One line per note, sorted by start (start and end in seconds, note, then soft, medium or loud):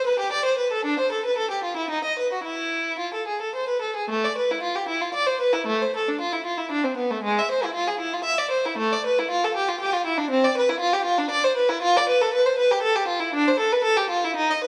0.07 0.19 B4 medium
0.19 0.32 G4 soft
0.32 0.45 D5 medium
0.45 0.58 C5 medium
0.58 0.71 B4 soft
0.72 0.85 A4 medium
0.85 0.99 D4 medium
1.00 1.12 C5 medium
1.12 1.25 A4 soft
1.26 1.38 B4 soft
1.38 1.51 A4 medium
1.51 1.64 G4 soft
1.64 1.77 F4 soft
1.77 1.90 E4 soft
1.90 2.03 D#4 medium
2.04 2.17 D#5 soft
2.19 2.31 B4 soft
2.33 2.45 F#4 soft
2.44 2.98 E4 soft
2.99 3.13 F4 soft
3.14 3.27 A4 soft
3.27 3.41 G#4 soft
3.41 3.55 A4 soft
3.55 3.69 C5 soft
3.68 3.82 B4 soft
3.82 3.95 A4 soft
3.96 4.09 G#4 soft
4.10 4.22 A3 medium
4.24 4.37 D5 soft
4.38 4.50 B4 soft
4.51 4.63 E4 soft
4.63 4.75 F4 medium
4.76 4.88 G4 soft
4.88 5.01 E4 soft
5.01 5.14 F4 soft
5.14 5.27 D5 medium
5.26 5.40 C5 medium
5.41 5.53 B4 medium
5.53 5.67 E4 soft
5.67 5.80 A3 medium
5.82 5.94 C5 soft
5.96 6.08 A4 soft
6.08 6.21 D4 soft
6.20 6.33 F4 medium
6.32 6.45 E4 soft
6.46 6.58 F4 soft
6.58 6.71 E4 soft
6.71 6.84 D4 medium
6.84 6.97 C4 soft
6.97 7.10 B3 soft
7.11 7.23 A3 soft
7.23 7.36 G#3 medium
7.39 7.50 E5 soft
7.51 7.63 C5 soft
7.64 7.76 E4 soft
7.74 7.87 F4 medium
7.87 8.00 G#4 soft
8.00 8.12 E4 medium
8.13 8.26 F4 soft
8.24 8.38 E5 medium
8.38 8.52 D5 medium
8.51 8.64 C5 medium
8.66 8.79 E4 medium
8.78 8.91 A3 medium
8.92 9.05 D5 medium
9.06 9.18 B4 medium
9.19 9.31 E4 medium
9.31 9.43 F4 medium
9.44 9.56 A4 medium
9.56 9.68 G4 medium
9.68 9.81 F4 medium
9.80 9.93 G4 medium
9.93 10.06 F4 medium
10.06 10.18 E4 medium
10.18 10.30 D4 medium
10.30 10.43 C4 medium
10.44 10.56 D5 medium
10.57 10.69 B4 medium
10.69 10.81 E4 medium
10.80 10.92 F4 medium
10.93 11.05 G4 medium
11.05 11.17 F4 medium
11.18 11.30 D4 medium
11.30 11.43 D5 medium
11.44 11.56 C5 medium
11.57 11.69 B4 medium
11.69 11.82 E4 medium
11.82 11.95 F4 medium
11.97 12.09 D5 medium
12.09 12.21 B4 medium
12.21 12.34 A4 medium
12.34 12.46 B4 medium
12.46 12.59 C5 medium
12.58 12.71 B4 medium
12.71 12.84 G4 medium
12.82 12.96 A4 medium
12.96 13.09 G4 medium
13.08 13.21 F4 medium
13.20 13.34 E4 medium
13.34 13.47 D4 medium
13.47 13.60 C5 medium
13.59 13.72 A4 medium
13.72 13.85 B4 medium
13.84 13.97 A4 medium
13.97 14.10 G4 medium
14.10 14.23 F4 medium
14.24 14.37 E4 medium
14.36 14.50 D#4 medium
14.50 14.64 D#5 medium
14.64 14.67 B4 medium